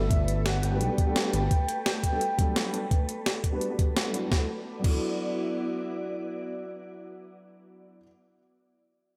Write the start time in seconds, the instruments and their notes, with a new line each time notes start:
Already playing: analog synth bass G1, ambient pad A3 A4 B4, soft synth lead E5
0.11 kick, closed hi-hat
0.28 closed hi-hat
0.46 soft synth lead F#5, snare, closed hi-hat
0.63 analog synth bass G1, soft synth lead G5, closed hi-hat
0.71 felt piano G3 B3 D4 F#4 B4
0.81 analog synth bass B1, closed hi-hat
0.89 felt piano G3 B3 D4 F#4 D5
0.98 kick, closed hi-hat
1.06 felt piano G3 B3 D4 F#4 A4
1.16 snare, closed hi-hat
1.24 felt piano G3 B3 D4 F#4 A4
1.32 analog synth bass G1, felt piano G3 B3 D4 F#4 B4, closed hi-hat
1.51 kick, closed hi-hat
1.69 closed hi-hat
1.86 snare, closed hi-hat
2.04 kick, closed hi-hat
2.11 felt piano G3 B3 D4 F#4 A4
2.21 closed hi-hat
2.37 felt piano F#3 G3 B3 D4 A4, kick, closed hi-hat
2.56 snare, closed hi-hat
2.72 felt piano G3 B3 D4 F#4 A4, closed hi-hat
2.91 kick, closed hi-hat
3.09 closed hi-hat
3.26 snare, closed hi-hat
3.44 kick, closed hi-hat
3.52 felt piano G3 B3 D4 F#4 B4
3.61 closed hi-hat
3.69 felt piano G3 B3 D4 F#4 D5
3.79 kick, closed hi-hat
3.97 snare, closed hi-hat
4.04 felt piano G3 B3 D4 F#4 A4
4.12 felt piano F#3 B3 D4 E4 F#4, closed hi-hat
4.27 felt piano F#3 B3
4.31 ambient pad B3 E4 F#4 D5, felt piano D4 E4, kick, snare
4.36 felt piano A4
4.79 felt piano F#3 B3
4.84 felt piano D4 E4, kick, crash
4.89 felt piano A4